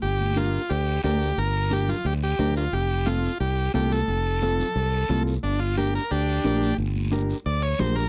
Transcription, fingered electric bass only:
\new Staff \with { instrumentName = "Fingered electric bass" } { \clef bass \time 4/4 \key g \minor \tempo 4 = 178 g,,2 d,4 d,4 | g,,2 d,4 d,4 | f,,2 c,4 c,4 | f,,2 c,4 c,4 |
g,,2 d,4 bes,,4 | g,,2 d,4 bes,,4 | }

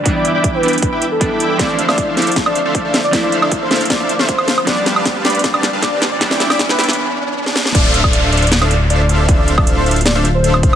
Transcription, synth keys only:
\new Staff \with { instrumentName = "Synth keys" } { \time 4/4 \key d \dorian \tempo 4 = 156 <e g b d'>4. <e g b d'>4. <e g b d'>4 | <f a c' e'>4. <f a c' e'>2~ <f a c' e'>8 | <f a c' e'>4. <f a c' e'>2~ <f a c' e'>8 | <f a b d'>4. <f a b d'>2~ <f a b d'>8 |
<e g b d'>4. <e g b d'>2~ <e g b d'>8 | r1 | r1 | }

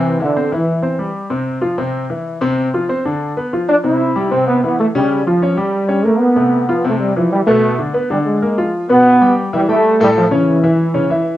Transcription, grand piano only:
\new Staff \with { instrumentName = "Grand piano" } { \time 4/4 \key c \major \tempo 4 = 190 <c c'>8 <e e'>8 <c' c''>8 <e e'>4 <c' c''>8 <g g'>4 | <c c'>4 <f f'>8 <c c'>4 <e e'>4 <c c'>8~ | <c c'>8 <f f'>8 <c' c''>8 <d d'>4 <b b'>8 <f f'>4 | <c c'>4 <g g'>8 <c c'>4 <e e'>4 <cis cis'>8~ |
<cis cis'>8 <eis eis'>8 <cis' cis''>8 <g g'>4 <des' des''>8 <bes bes'>4 | <c a>4 <f f'>8 <c c'>4 <e e'>4 <b, b>8~ | <b, b>8 <d d'>8 <b b'>8 <d d'>4 <bes bes'>8 <f f'>4 | <b, b b'>4 <g g' g''>4 <e e' e''>8 <g g' g''>4 <a, a a'>8~ |
<a, a a'>8 <cis cis' cis''>4 <e e' e''>4 <cis cis' cis''>8 <e e' e''>4 | }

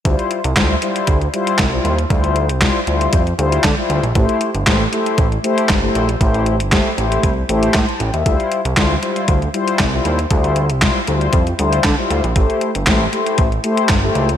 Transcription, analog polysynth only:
\new Staff \with { instrumentName = "Analog polysynth" } { \time 4/4 \key d \minor \tempo 4 = 117 << { r1 | r1 | r1 | r2. c'''16 a''16 g''16 e''16~ |
e''16 r2. r8. | r1 | r1 | } \\ { <g e' f' c''>8. r16 <g e' f' c''>16 r16 <g e' f' c''>8. r16 <g e' f' c''>8 r16 <g e' f' c''>8 r16 | <g e' f' c''>8. r16 <g e' f' c''>16 r16 <g e' f' c''>8. r16 <g e' f' c''>8 r16 <g e' f' c''>8 r16 | <a e' g' c''>8. r16 <a e' g' c''>16 r16 <a e' g' c''>8. r16 <a e' g' c''>8 r16 <a e' g' c''>8 r16 | <a e' g' c''>8. r16 <a e' g' c''>16 r16 <a e' g' c''>8. r16 <a e' g' c''>8 r4 |
<g e' f' c''>8. r16 <g e' f' c''>16 r16 <g e' f' c''>8. r16 <g e' f' c''>8 r16 <g e' f' c''>8 r16 | <g e' f' c''>8. r16 <g e' f' c''>16 r16 <g e' f' c''>8. r16 <g e' f' c''>8 r16 <g e' f' c''>8 r16 | <a e' g' c''>8. r16 <a e' g' c''>16 r16 <a e' g' c''>8. r16 <a e' g' c''>8 r16 <a e' g' c''>8 r16 | } >> }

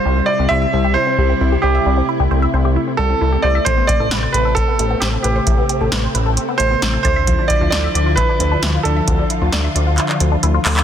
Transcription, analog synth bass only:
\new Staff \with { instrumentName = "Analog synth bass" } { \clef bass \time 4/4 \key c \major \tempo 4 = 133 c,8 r16 c,16 c,8 c,8. r16 c,8 c,8 c,8 | c,8 r16 c,16 c,8 c,8. r16 c,8 c,8 c,8 | a,,8 r16 a,,16 a,,8 a,,8. r16 a,,8 a,,8 a,,8 | a,,8 r16 a,,16 a,,8 a,,8. r16 a,,8 a,,8 d,8~ |
d,8 r16 d,16 d,8 d,8. r16 d,8 d,8 d,8 | d,8 r16 d,16 d,8 d,8. r16 d,8 d,8 d,8 | }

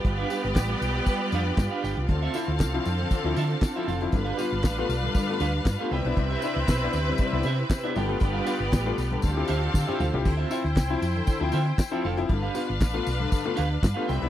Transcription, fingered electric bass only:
\new Staff \with { instrumentName = "Fingered electric bass" } { \clef bass \time 4/4 \key g \mixolydian \tempo 4 = 118 g,,8 r16 g,,16 a,,8 b,,8 r8 f,8 g,16 r16 g,,16 c,16 | d,8 r16 d,16 c,8 f,8 r16 d,16 d8 r8 f,,8 | g,,8 r16 g,,16 a,,8 b,,8 r8 d,8 g,16 r16 c,16 b,,16 | c,8 r16 c,16 b,,8 d,8 r16 c,16 c8 r8 g,,8 |
g,,8 r16 g,,16 a,,8 b,,8 d,8 d,8 d16 r16 d,16 c,16 | d,8 r16 d,16 c,8 f,8 r16 d,16 d8 r8 f,,8 | g,,8 r16 g,,16 a,,8 b,,8 r8 d,8 g,16 r16 c,16 b,,16 | }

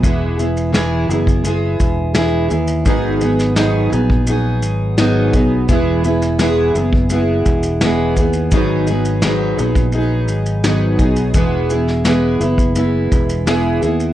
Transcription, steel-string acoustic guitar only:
\new Staff \with { instrumentName = "Steel-string acoustic guitar" } { \time 4/4 \key e \lydian \tempo 4 = 85 <e gis b e' gis'>8 <b e' gis'>8 <e gis b e' gis'>8 <b e' gis'>8 <gis b e' gis'>4 <e gis b e' gis'>8 <b e' gis'>8 | <gis, dis fis b dis' gis'>8 <fis b dis' gis'>8 <gis, dis fis b dis' gis'>8 <fis b dis' gis'>8 <fis b dis' gis'>4 <gis, dis fis b dis' gis'>8 <fis b dis' gis'>8 | <e gis b e' gis'>8 <b e' gis'>8 <e gis b e' gis'>8 <b e' gis'>8 <gis b e' gis'>4 <e gis b e' gis'>8 <b e' gis'>8 | <gis, dis fis b dis' gis'>8 <fis b dis' gis'>8 <gis, dis fis b dis' gis'>8 <fis b dis' gis'>8 <fis b dis' gis'>4 <gis, dis fis b dis' gis'>8 <fis b dis' gis'>8 |
<e gis b e' gis'>8 <b e' gis'>8 <e gis b e' gis'>8 <b e' gis'>8 <gis b e' gis'>4 <e gis b e' gis'>8 <b e' gis'>8 | }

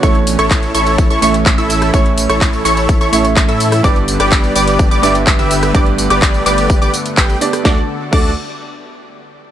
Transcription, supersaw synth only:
\new Staff \with { instrumentName = "Supersaw synth" } { \time 4/4 \key g \lydian \tempo 4 = 126 <e' a' cis''>16 r8 <e' a' cis''>8. <e' a' cis''>8. <e' a' cis''>16 <e' a' cis''>16 r8 <e' a' e''>8. | <e' a' cis''>16 r8 <e' a' cis''>8. <e' a' cis''>8. <e' a' cis''>16 <e' a' cis''>16 r8 <e' a' e''>8. | <g' b' d''>16 r8 <g' b' d''>8. <g' b' d''>8. <g' b' d''>16 <g' b' d''>16 r8 <g' b' e''>8. | <g' b' d''>16 r8 <g' b' d''>8. <g' b' d''>8. <g' b' d''>16 r8 <g' b' g''>8 r8 |
<fis' a' d''>16 r8. <fis' a' d''>8 r2 r8 | }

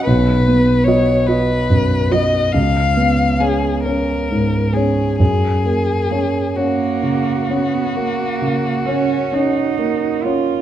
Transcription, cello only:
\new Staff \with { instrumentName = "Cello" } { \time 12/8 \key fis \major \tempo 4. = 44 r4 fis8 r4 fis8 r4 b8 r4 b8 | r4 ais8 ais4 b8 ais4 cis'8 dis'4 eis'8 | }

